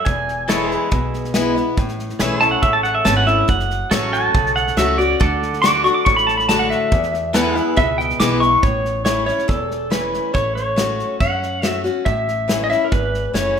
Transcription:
0.05 E1 E2 G#5, kick, snare
0.28 snare
0.48 E3 G#3 B3 E4 A4 C#5 E5, snare, hi-hat pedal
0.69 G#4, snare
0.75 B4
0.91 B1 B2, kick, snare
1.14 snare
1.24 snare
1.34 E3 G#3 B3 E4, snare, hi-hat pedal
1.56 B3 E4, snare
1.77 A1 A2, kick, snare
1.88 snare
1.99 snare
2.09 snare
2.19 B1 E3 A3 C#4 E4 G#4 B4 E5, snare, hi-hat pedal
2.40 C#4 E4 A4 A5, snare
2.46 C#5
2.51 F#5
2.62 A1 E2 E5, kick, snare
2.73 A5
2.83 F#5, snare
2.95 E5
3.05 G#1 E3 A3 C#4 E4 A5, snare, hi-hat pedal
3.17 F#5
3.27 C#4 E4 E5, snare
3.48 F#1 F#2 F#5, kick, snare
3.59 snare
3.70 snare
3.91 A1 F#3 A3 C#4 F#4 A4 C#5 E5, snare, hi-hat pedal
4.13 A5, snare
4.18 F#5
4.34 B1 C#3, kick, snare
4.46 snare
4.56 F#5, snare
4.67 snare
4.77 C#2 F#3 A3 C#4 F#4 E5, snare, hi-hat pedal
4.98 C#4 F#4 D5, snare
5.20 D2 D3 A4 D5 F#5, kick, snare
5.42 snare
5.53 snare
5.62 D3 A3 D4 F#4 D6, snare, hi-hat pedal
5.84 D4 F#4 C#6, snare
5.94 D6
6.05 A1 A2 C#6, kick, snare
6.17 B5, snare
6.27 A5, snare
6.37 B5, snare
6.49 D3 A3 D4 F#4 A5, snare, hi-hat pedal
6.59 F#5
6.70 E5, snare
6.92 E2, kick, snare
7.03 snare
7.14 snare
7.33 E3 G#3 B3 E4 A4 B4 F#5, snare, hi-hat pedal
7.54 B3 E4 G#4, snare
7.62 E5
7.77 C#2 B2 E5, kick, snare
7.98 G5, snare
8.10 snare
8.20 B1 E3 G#3 B3 E4 D6, snare, hi-hat pedal
8.40 B3 E4 C#6, snare
8.63 A1 A2 C#5, kick, snare
8.85 snare
9.05 E3 A3 C#4 E4 C#5, snare, hi-hat pedal
9.26 C#4 E4 C#5, snare
9.38 snare
9.48 E1 E2 A4, kick, snare
9.71 snare
9.90 E3 A3 C#4 E4 B4, snare, hi-hat pedal
10.14 snare
10.34 A1 A3 C#5, kick, snare
10.55 C#5, snare
10.76 A3 C#4 F#4, snare, hi-hat pedal
10.99 snare
11.20 F#2 C#4 F#5, kick, snare
11.42 snare
11.62 A3 C#4 F#4, snare, hi-hat pedal
11.66 E5
11.84 C#4 F#4, snare
12.05 A1 A2 E5, kick, snare
12.28 snare
12.48 E3 A3 C#4 E4, snare, hi-hat pedal
12.64 D#5
12.70 C#4 E4 E5, snare
12.84 A#4
12.92 G#1 E2 B4, kick, snare
13.14 snare
13.33 F#1 E3 A3 C#4 E4 C#5, snare, hi-hat pedal
13.56 snare

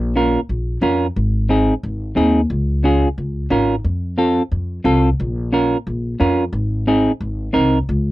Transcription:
Already playing: A#1
0.16 C#4 F4 A#4
0.49 A#1
0.81 F2 C#4 F4 A#4
1.16 G#1
1.49 C4 D#4 G#4
1.83 G#1
2.16 D#2 C4 D#4 G#4
2.50 C#2
2.84 C#4 F4 G#4
3.18 C#2
3.50 G#1 C#4 F4 A#4
3.84 F2
4.18 C4 F4 A4
4.52 F2
4.84 C2 C4 F4 A4
5.20 A#1
5.53 C#4 F4 A#4
5.87 A#1
6.20 F2 C#4 F4 A#4
6.53 G#1
6.87 C4 D#4 G#4
7.20 G#1
7.53 C2 C4 D#4 A#4
7.89 C#2

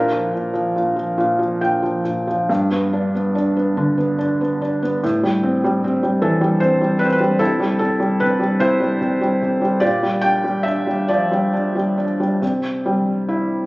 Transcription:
Already playing: A#2 D4 A#4
0.12 F3
0.33 A#2
0.53 F3
0.76 A#2
0.96 F3
1.18 A#2
1.39 F3
1.61 A#2 G5
1.82 F3
2.04 A#2
2.27 F3
2.49 G2
2.71 B3
2.93 D4
3.15 B3
3.35 D4
3.56 B3
3.77 D3
3.98 B3
4.18 D4
4.41 B3
4.62 D4
4.83 B3
5.03 A2
5.23 G3
5.43 C4
5.64 G3
5.84 C4
6.03 G3
6.22 E3 A4
6.41 G3
6.60 C4 C5
6.81 G3
6.99 C4 B4
7.05 C5
7.12 B4
7.21 G3
7.39 C3 E4 A4
7.60 G3
7.79 C3 A4
8.00 G3
8.20 C3 B4
8.40 G3
8.60 C3 E4 C5
8.80 G3
9.01 C3
9.21 G3
9.42 C3
9.61 G3
9.80 A#2 G4 D5
10.03 G3
10.21 D4 G5
10.44 G3
10.63 D4 E5
10.87 G3
11.08 F3 D5
11.32 G3
11.53 D4
11.75 G3
11.98 D4
12.20 G3
12.42 C3
12.86 G3
13.29 E4

